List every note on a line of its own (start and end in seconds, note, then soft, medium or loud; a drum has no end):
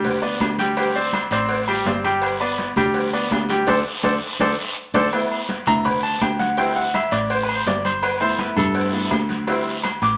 0.00 0.37 D2 medium
0.00 0.16 G3 medium
0.00 0.16 G4 medium
0.00 0.16 G5 medium
0.00 long guiro medium
0.05 cowbell loud
0.05 high conga soft
0.05 low conga medium
0.22 0.52 B3 medium
0.22 0.52 B4 medium
0.22 0.52 D5 medium
0.22 high conga soft
0.22 low agogo medium
0.40 1.25 D2 medium
0.40 cowbell medium
0.40 high conga soft
0.40 low timbale medium
0.40 low agogo loud
0.40 short guiro medium
0.58 0.74 G3 medium
0.58 0.74 G4 medium
0.58 0.74 G5 medium
0.58 cowbell medium
0.58 high conga medium
0.58 short guiro medium
0.76 0.92 G3 medium
0.76 0.92 G4 medium
0.76 0.92 G5 medium
0.76 cowbell loud
0.76 high conga soft
0.76 low agogo medium
0.76 long guiro medium
0.95 1.25 C4 medium
0.95 1.25 C5 medium
0.95 1.25 D5 medium
0.95 high conga soft
1.13 cowbell medium
1.13 high conga medium
1.13 low timbale medium
1.13 low agogo loud
1.13 short guiro medium
1.31 1.82 A1 medium
1.31 1.62 C4 medium
1.31 1.62 C5 medium
1.31 1.62 D5 medium
1.31 cowbell medium
1.31 high conga soft
1.31 low agogo medium
1.31 short guiro medium
1.49 cowbell loud
1.49 high conga soft
1.49 long guiro medium
1.68 1.83 G3 medium
1.68 1.83 G4 medium
1.68 1.83 G5 medium
1.68 high conga soft
1.68 low agogo loud
1.85 2.70 G1 medium
1.85 2.01 C4 medium
1.85 2.01 C5 medium
1.85 2.02 D5 medium
1.85 cowbell medium
1.85 high conga medium
1.85 low timbale medium
1.85 low agogo medium
1.85 short guiro medium
2.04 2.34 G3 medium
2.04 2.34 G4 medium
2.04 2.34 G5 medium
2.04 high conga medium
2.04 low agogo medium
2.04 short guiro medium
2.22 cowbell loud
2.22 high conga soft
2.22 low agogo loud
2.22 long guiro medium
2.40 2.70 B3 medium
2.40 2.70 B4 medium
2.40 2.71 D5 medium
2.40 high conga soft
2.40 low agogo medium
2.58 cowbell medium
2.58 high conga loud
2.58 low timbale medium
2.58 short guiro medium
2.76 3.27 D2 medium
2.76 3.07 G3 medium
2.76 3.07 G4 medium
2.76 3.07 G5 medium
2.76 high conga soft
2.76 low conga medium
2.76 low agogo loud
2.76 short guiro medium
2.94 cowbell loud
2.94 high conga soft
2.94 long guiro medium
3.13 3.43 B3 medium
3.13 3.43 B4 medium
3.13 3.43 D5 medium
3.13 high conga soft
3.13 low agogo medium
3.31 3.65 D2 medium
3.31 cowbell medium
3.31 low timbale medium
3.31 low agogo loud
3.31 short guiro medium
3.49 3.64 G3 medium
3.49 3.64 G4 medium
3.49 3.65 G5 medium
3.49 cowbell medium
3.49 high conga medium
3.49 short guiro medium
3.67 3.81 D2 loud
3.67 3.79 A4 loud
3.67 3.79 C5 loud
3.67 3.79 D5 loud
3.67 cowbell loud
3.67 high conga loud
3.67 high timbale loud
3.67 long guiro loud
4.03 4.17 D2 loud
4.03 4.15 A4 medium
4.03 4.15 C5 medium
4.03 4.15 D5 medium
4.03 cowbell medium
4.03 high conga loud
4.03 high timbale loud
4.03 long guiro loud
4.39 4.53 D2 medium
4.39 4.52 A4 loud
4.39 4.52 C5 loud
4.39 4.52 D5 loud
4.39 cowbell loud
4.39 high conga loud
4.39 high timbale loud
4.94 5.07 D2 loud
4.94 5.06 A4 loud
4.94 5.06 C5 loud
4.94 5.06 D5 loud
4.94 cowbell loud
4.94 high conga loud
4.94 high timbale medium
4.94 long guiro medium
5.12 5.37 A3 medium
5.12 5.37 B3 medium
5.12 5.37 E4 medium
5.12 cowbell loud
5.12 low agogo loud
5.12 long guiro medium
5.31 high conga soft
5.31 low agogo medium
5.48 cowbell medium
5.48 high conga medium
5.48 low timbale medium
5.48 short guiro medium
5.66 6.17 D2 medium
5.66 5.83 A3 soft
5.66 5.83 B3 soft
5.66 5.84 E4 medium
5.66 5.85 A#5 loud
5.66 high conga soft
5.66 low conga medium
5.66 low agogo loud
5.66 short guiro medium
5.85 6.03 B5 loud
5.85 cowbell loud
5.85 high conga soft
5.85 low conga medium
5.85 long guiro medium
6.03 6.21 A5 medium
6.03 high conga soft
6.03 low agogo medium
6.20 7.06 D2 medium
6.20 6.39 G5 medium
6.20 cowbell medium
6.20 low timbale medium
6.20 low agogo loud
6.20 short guiro medium
6.39 6.57 F#5 medium
6.39 cowbell medium
6.39 high conga medium
6.39 short guiro medium
6.57 6.82 G3 medium
6.57 6.82 C4 medium
6.57 6.82 E4 medium
6.57 6.75 G5 loud
6.57 cowbell loud
6.57 high conga soft
6.57 low agogo medium
6.57 long guiro medium
6.76 6.93 F#5 medium
6.76 high conga soft
6.93 7.12 E5 medium
6.93 cowbell medium
6.93 high conga loud
6.93 low timbale medium
6.93 low agogo loud
6.93 short guiro medium
7.11 7.62 A1 medium
7.11 7.30 D5 medium
7.11 cowbell medium
7.11 high conga soft
7.11 low agogo medium
7.11 short guiro medium
7.30 7.42 C5 medium
7.30 cowbell loud
7.30 high conga soft
7.30 long guiro medium
7.43 7.54 B4 medium
7.49 high conga soft
7.49 low agogo loud
7.55 7.67 C5 medium
7.66 8.51 G1 medium
7.66 7.84 D5 medium
7.66 cowbell medium
7.66 high conga medium
7.66 low timbale medium
7.66 low agogo medium
7.66 short guiro medium
7.85 8.02 C5 medium
7.85 high conga medium
7.85 low agogo medium
7.85 short guiro medium
8.03 8.21 B4 medium
8.03 cowbell loud
8.03 high conga soft
8.03 low agogo loud
8.03 long guiro medium
8.20 8.91 A3 medium
8.20 8.92 B3 medium
8.20 8.92 E4 medium
8.20 8.38 C5 loud
8.20 high conga soft
8.20 low agogo medium
8.39 8.57 B4 medium
8.39 cowbell medium
8.39 high conga medium
8.39 low timbale medium
8.39 short guiro medium
8.56 9.07 G2 medium
8.56 9.44 A4 medium
8.56 high conga soft
8.56 low conga medium
8.56 low agogo loud
8.56 short guiro medium
8.75 cowbell loud
8.75 high conga soft
8.75 long guiro medium
8.93 9.09 A3 soft
8.93 9.09 B3 soft
8.93 9.10 E4 medium
8.93 high conga soft
8.93 low agogo medium
9.11 9.96 D2 medium
9.11 cowbell medium
9.11 high conga soft
9.11 low timbale medium
9.11 low agogo loud
9.11 short guiro medium
9.29 cowbell medium
9.29 high conga medium
9.29 short guiro medium
9.47 9.71 G3 medium
9.47 9.72 C4 medium
9.47 9.72 E4 medium
9.47 cowbell loud
9.47 high conga soft
9.47 low agogo medium
9.47 long guiro medium
9.66 high conga soft
9.84 cowbell medium
9.84 high conga loud
9.84 low timbale medium
9.84 low agogo loud
9.84 short guiro medium
10.02 10.17 A1 loud
10.02 10.17 D6 loud
10.02 cowbell medium
10.02 low agogo medium
10.02 short guiro medium